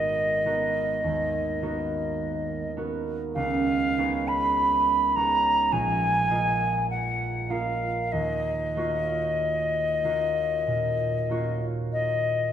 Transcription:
Already playing: G#1 A#3 B3 D#4 F#4 A#4 D#5
0.45 B3 D#4 F#4 A#4
1.04 D#2
1.62 B3 D#4 F#4 A#4
2.77 B3 D#4 F#4 A#4
3.35 C#2 F5
3.98 B3 D#4 G#4 C#5
4.28 B5
5.16 B3 D#4 G#4 C#5 A#5
5.72 A#1 G#5
6.29 A#3 F4 A#4 D#5
6.90 F#5
7.50 A#3 F4 A#4 D#5 F5
8.12 D#2 D#5
8.76 A#3 F4 F#4 C#5
10.04 A#3 F4 F#4 C#5
10.67 A#2
11.29 A#3 F4 F#4 C#5
11.92 D#5

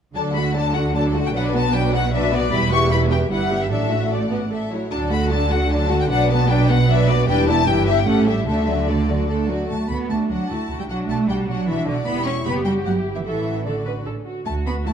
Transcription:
0.14 D2 D3 F#3 D4 A4 D5 A5
0.34 A3 F#4 F#5 B5
0.54 F#3 D4 A4 D5 A5
0.74 A3 F#4 F#5
0.94 F#3 D4 A4 D5 A5
1.14 A3 F#4 F#5
1.26 G5
1.33 B1 B2 F#3 D4 B4 D5 F#5
1.54 B3 F#4 B4 A5
1.73 F#3 D4 B4 D5 G5
1.93 B3 F#4 B4 F#5
2.12 F#3 D4 B4 D5 E5
2.32 B3 F#4 B4 D5
2.51 E1 E2 G3 E4 B4 B5
2.71 B3 G4 E5 C#6
2.90 G3 E4 B4 B5
3.10 B3 G4 E5 G5
3.30 G1 G2 G3 E4 B4 F#5
3.50 B3 G4 E5
3.62 E5
3.70 A1 A2 F#3 D4 A4 D5 E5
3.90 A3 F#4 F#5
4.10 A3 A4 D5
4.30 B3 F#4 F#5
4.50 A3 A4 E5
4.71 F#3 E4 C#5
4.91 D2 D3 F#3 D4 A4 D5 A5
5.10 A3 F#4 F#5 B5
5.30 F#3 D4 A4 D5 A5
5.50 A3 F#4 F#5
5.69 F#3 D4 A4 D5 A5
5.89 A3 F#4 F#5
6.00 G5
6.09 B1 B2 F#3 D4 B4 D5 F#5
6.29 B3 F#4 B4 A5
6.49 F#3 D4 B4 D5 G5
6.68 B3 F#4 B4 F#5
6.88 F#3 D4 B4 D5 E5
7.08 B3 F#4 B4 D5
7.27 E1 E2 G3 D4 G4 B4 G5
7.47 B3 E4 D5 A5
7.65 G1 G2 E3 E4 G4 B4 G5
7.86 G3 E4 G4 E5
7.97 G5
8.06 A1 A2 A3 C#4 G4 A4 F#5
8.26 G3 A3 E4 G4 E5
8.46 D2 D3 A3 D4 A4 E5
8.68 F#3 A3 F#4 D5
8.88 A3 D4 A4 D5
9.08 F#3 A3 F#4 D5
9.29 A3 D4 A4
9.48 F#3 A3 F#4 D5
9.69 D2 A3 F#4 A5
9.89 D2 B3 F#4 B5
10.09 D2 A3 D4 F#4 A5
10.29 D2 F#3 F#4 F#5
10.49 D2 A3 E4 F#4 A5
10.69 D2 F#4
10.79 G3 G5
10.88 B1 F#3 D4 F#4 F#5
11.08 B1 A3 F#4 A5
11.27 B1 G3 D4 F#4 G5
11.47 B1 F#3 F#4 F#5
11.67 B1 E3 F#4 E5
11.87 B1 D3 F#4 D5
12.06 E1 B3 E4 G4 B5
12.25 C#4 C#6
12.45 F#1 B3 G4 B5
12.65 G3 F#4 G5
12.85 G1 F#3 E4 F#5
13.15 E3 E5
13.25 A1 E3 F#4 A4 E5
13.65 D3 F#4 A4 D5
13.86 B4
14.05 A1 C#4 A4
14.25 F#4
14.45 D2 A3 F#4 A5
14.66 B3 B5
14.86 A3 E4 F#4 A5

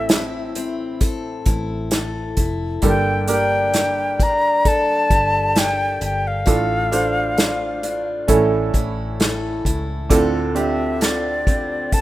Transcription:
Already playing: A1 A2 E3 A3 C4 E4 A4 E5
0.09 E4, snare, closed hi-hat
0.55 C4, closed hi-hat
1.01 A4, kick, closed hi-hat
1.46 A1 E4, kick, closed hi-hat
1.91 A4, snare, closed hi-hat
2.37 F1 E4, kick, closed hi-hat
2.82 G1 G2 D3 G3 A#3 D4 G4 A4, kick, closed hi-hat
2.87 G5
3.28 A#3 D4 G4 A#4, closed hi-hat
3.33 G5
3.74 G4, snare, closed hi-hat
4.20 D4 A#5, kick, closed hi-hat
4.65 A4 A5, kick, closed hi-hat
5.10 G1 G4, kick, closed hi-hat
5.56 A4 G5, snare, closed hi-hat
6.01 G1 G4 G5, closed hi-hat
6.27 F5
6.46 A1 A2 A3 D4 F4 A4, kick, closed hi-hat
6.92 A3 D4 F4 C5, closed hi-hat
7.38 F4, snare, closed hi-hat
7.83 D4, closed hi-hat
8.28 A1 A2 E3 A3 C#4 E4 A4, kick, closed hi-hat
8.74 A1 E4, kick, closed hi-hat
9.20 A4, snare, closed hi-hat
9.65 C#2 E4, kick, closed hi-hat
10.09 D2 A2 D3 C4 D4 F4 A4, kick, closed hi-hat
10.55 C4 D4 F4 G4 E5, closed hi-hat
11.01 F4 D5, snare, closed hi-hat, tambourine
11.47 C4, kick, closed hi-hat
11.92 A4 A5, kick, closed hi-hat

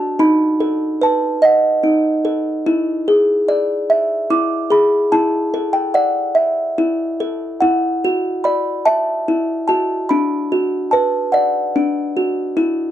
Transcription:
Already playing: D4 F#4 A4 D5 A5
0.19 D#4 B5
0.60 A4
1.01 B4 A5
1.42 D#5 F#5
1.83 D#4
2.25 A4
2.66 E4
3.08 G#4
3.48 D5
3.90 E5
4.30 E4 D6
4.70 G#4 B5
5.12 E4 A5
5.54 A4
5.73 G5
5.94 D5 F#5
6.35 E5
6.78 E4
7.20 A4
7.61 E4 F#5
8.05 F#4
8.44 D5 B5
8.85 E5 A5
9.28 E4
9.68 F#4 A5
10.09 D4 B5
10.52 F#4
10.91 B4 A5
11.32 D5 F#5
11.76 D4
12.17 F#4
12.57 E4

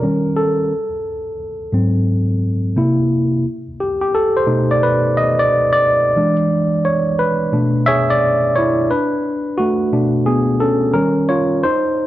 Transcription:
Already playing: A#4
0.02 D#3 G3 C#4
0.36 A4
1.72 G#2 F#3 C4
2.76 C3 A#3 E4
3.80 G4
4.01 G4
4.15 A4
4.37 C5
4.46 B2 A3 D#4
4.71 D5
4.83 B4
5.17 D#5
5.39 D5
5.73 D5
6.16 E3 G#3 D4
6.85 C#5
7.19 B4
7.52 B2 A3 D4
7.86 G#4 C#5 E5
8.10 D5
8.56 E4 C#5
8.91 D4 B4
9.58 A3 F#4
9.93 B2 A3 D4
10.26 B3 G#4
10.60 C#4 A4
10.93 D#3 G3 C#4 A#4
11.29 F4 C#5
11.63 D#4 C5

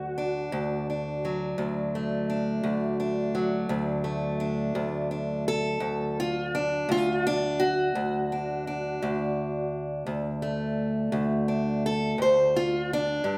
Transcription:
Already playing: D2 F#3 F#4
0.18 D4
0.52 D2
0.90 D4
1.25 F#3
1.58 D2
1.95 A3
2.30 D4
2.63 D2
3.00 D4
3.35 F#3
3.69 D2
4.04 A3
4.40 D4
4.75 D2
5.11 D4
5.48 A4
5.80 D2
6.20 F4
6.55 D4
6.89 D2 F4
7.27 D4
7.60 F#4
7.95 D2
8.32 D4
8.67 D4
9.02 D2
10.06 D2
10.42 A3
11.12 D2
11.48 D4
11.86 A4
12.18 D2 C5
12.56 F4
12.93 D4
13.24 G2

